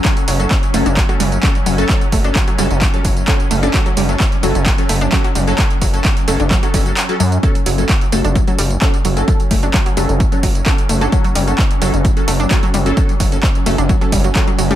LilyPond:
<<
  \new Staff \with { instrumentName = "Synth stab" } { \time 4/4 \key fis \minor \tempo 4 = 130 <fis cis' a'>16 r8 <fis cis' a'>16 r8 <fis cis' a'>16 r8 <fis cis' a'>16 r8 <fis cis' a'>16 r8 <fis cis' a'>16 | r8. <fis cis' a'>16 r8 <fis cis' a'>16 r8 <fis cis' a'>16 r8 <fis cis' a'>16 r8 <fis cis' a'>16 | <fis cis' a'>16 r8 <fis cis' a'>16 r8 <fis cis' a'>16 r8 <fis cis' a'>16 r8 <fis cis' a'>16 r8 <fis cis' a'>16 | <fis cis' a'>16 r8 <fis cis' a'>16 r8 <fis cis' a'>16 r8 <fis cis' a'>16 <fis cis' a'>16 <fis cis' a'>16 r16 <fis cis' a'>16 r8 |
<fis cis' a'>16 r8 <fis cis' a'>16 r8 <fis cis' a'>16 r8 <fis cis' a'>16 r8 <fis cis' a'>16 r8 <fis cis' a'>16 | <fis cis' a'>16 r8 <fis cis' a'>16 r8 <fis cis' a'>16 r8 <fis cis' a'>16 r8 <fis cis' a'>16 r8 <fis cis' a'>16 | <fis cis' a'>16 r8 <fis cis' a'>16 r8 <fis cis' a'>16 r8 <fis cis' a'>16 r8 <fis cis' a'>16 r8 <fis cis' a'>16 | <fis cis' a'>16 r8 <fis cis' a'>16 r8 <fis cis' a'>16 r8 <fis cis' a'>16 r8 <fis cis' a'>16 r8 <fis cis' a'>16 | }
  \new Staff \with { instrumentName = "Synth drone" } { \time 4/4 \key fis \minor <fis cis'>1~ | <fis cis'>1~ | <fis cis'>1~ | <fis cis'>1 |
<fis cis'>1~ | <fis cis'>1~ | <fis cis'>1~ | <fis cis'>1 | }
  \new Staff \with { instrumentName = "Synth arpeggio sound" } { \clef bass \time 4/4 \key fis \minor r8 fis16 r8. a16 d'16 fis16 fis16 g16 r8. fis16 r16 | r8 a16 d'16 fis16 fis16 g16 r8. fis16 r8. a16 d'16 | fis16 fis16 g16 r8. fis16 r8. a16 d'16 fis16 fis16 g16 r16 | r8 fis16 r8. a16 d'16 fis16 fis16 g16 r8. fis16 r16 |
r8 fis16 r8. a16 d'16 fis16 fis16 g16 r8. fis16 r16 | r8 a16 d'16 fis16 fis16 g16 r8. fis16 r8. a16 d'16 | fis16 fis16 g16 r8. fis16 r8. a16 d'16 fis16 fis16 g16 r16 | r8 fis16 r8. a16 d'16 fis16 fis16 g16 fis16 r16 fis16 fis16 g16 | }
  \new Staff \with { instrumentName = "Analog synth bass" } { \clef bass \time 4/4 \key fis \minor r8 fis,,8 r8 fis,,16 fis,,8 r16 fis,,8 r8 fis,,8 | r8 fis,,8 r8 fis,,16 fis,,8 r16 fis,,8 r8 fis,,8 | r8 fis,,8 r8 fis,,16 fis,,8 r16 fis,,8 r8 fis,,8 | r8 fis,,8 r8 fis,,16 fis,,8 r16 fis,,8 r8 fis,8 |
r8 fis,,8 r8 fis,,16 fis,,8 r16 fis,,8 r8 fis,,8 | r8 fis,,8 r8 fis,,16 fis,,8 r16 fis,,8 r8 fis,,8 | r8 fis,,8 r8 fis,,16 fis,,8 r16 fis,,8 r8 fis,,8 | r8 fis,,8 r8 fis,,16 fis,,8 r16 fis,,8 r8 fis,,8 | }
  \new DrumStaff \with { instrumentName = "Drums" } \drummode { \time 4/4 <hc hh bd tamb>16 <hh tamb>16 <hho tamb>16 <hh tamb>16 <hc hh bd tamb>16 <hh tamb>16 <hho tamb>16 <hh tamb>16 <hc hh bd tamb>16 <hh tamb>16 <hho tamb>16 <hh tamb>16 <hc hh bd tamb>16 <hh tamb>16 <hho tamb>16 <hh tamb>16 | <hc hh bd tamb>16 <hh tamb>16 <hho bd tamb>16 <hh tamb>16 <hc hh bd tamb>16 <hh tamb>16 <hho tamb>16 <hh tamb>16 <hc hh bd tamb>16 <hh tamb>16 <hho bd tamb>16 <hh tamb>16 <hc hh bd tamb>16 <hh tamb>16 <hho tamb>16 <hh tamb>16 | <hc hh bd tamb>16 <hh tamb>16 <hho tamb>16 <hh tamb>16 <hc hh bd tamb>16 <hh tamb>16 <hho tamb>16 <hh tamb>16 <hc hh bd tamb>16 <hh tamb>16 <hho tamb>16 <hh tamb>16 <hc hh bd tamb>16 <hh tamb>16 <hho tamb>16 <hh tamb>16 | <hc hh bd tamb>16 <hh tamb>16 <hho bd tamb>16 <hh tamb>16 <hc hh bd tamb>16 <hh tamb>16 <hho tamb>16 <hh tamb>16 <hc hh bd tamb>16 <hh tamb>16 <hho bd tamb>16 <hh tamb>16 <hc hh tamb>16 <hh tamb>16 <hho tamb>16 <hh tamb>16 |
<hh bd tamb>16 <hh tamb>16 <hho tamb>16 <hh tamb>16 <hc hh bd tamb>16 <hh tamb>16 <hho tamb>16 <hh tamb>16 <hh bd tamb>16 <hh tamb>16 <hho tamb>16 <hh tamb>16 <hc hh bd tamb>16 <hh tamb>16 <hho tamb>16 <hh tamb>16 | <hh bd tamb>16 <hh tamb>16 <hho bd tamb>16 <hh tamb>16 <hc hh bd tamb>16 <hh tamb>16 <hho tamb>16 <hh tamb>16 <hh bd tamb>16 <hh tamb>16 <hho bd tamb>16 <hh tamb>16 <hc hh bd tamb>16 <hh tamb>16 <hho tamb>16 <hh tamb>16 | <hh bd tamb>16 <hh tamb>16 <hho tamb>16 <hh tamb>16 <hc hh bd tamb>16 <hh tamb>16 <hho tamb>16 <hh tamb>16 <hh bd tamb>16 <hh tamb>16 <hho tamb>16 <hh tamb>16 <hc hh bd tamb>16 <hh tamb>16 <hho tamb>16 <hh tamb>16 | <hh bd tamb>16 <hh tamb>16 <hho bd tamb>16 <hh tamb>16 <hc hh bd tamb>16 <hh tamb>16 <hho tamb>16 <hh tamb>16 <hh bd tamb>16 <hh tamb>16 <hho bd tamb>16 tamb16 <hc hh bd tamb>16 <hh tamb>16 <hho tamb>16 <hh tamb>16 | }
>>